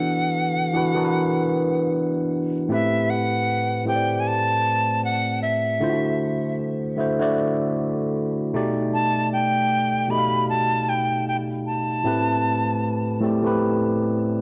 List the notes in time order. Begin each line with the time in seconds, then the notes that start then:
Already playing: E3 B3 D4 F#4 A4 F#5
0.73 E3 B3 D4 F#4 B4
0.95 E3 B3 D4 F#4 A#4
1.05 B4
2.68 A2 A3 C4 G4 B4
2.73 E5
3.10 F#5
3.85 A2 A3 C4 G4 C5 G5
3.96 D5
4.20 G#5
4.28 A5
5.05 F#5
5.42 E5
5.80 D3 A3 E4 F4 C5
5.89 F#4
6.96 D3 A3 E4 F#4
7.00 C5
7.19 D3 A3 E4 F#4 D5
8.53 B2 A3 D#4 G4 D5
8.94 A5
9.33 G5
10.08 B2 A3 D#4 G4 B5
10.12 D#5
10.18 F5
10.49 A5
10.89 G5
11.28 G5
11.67 A5
12.04 A2 A3 C4 G4 B4
13.20 A2 A3 C4 G4 D5
13.43 A2 A3 B3 G4 B4
13.51 C4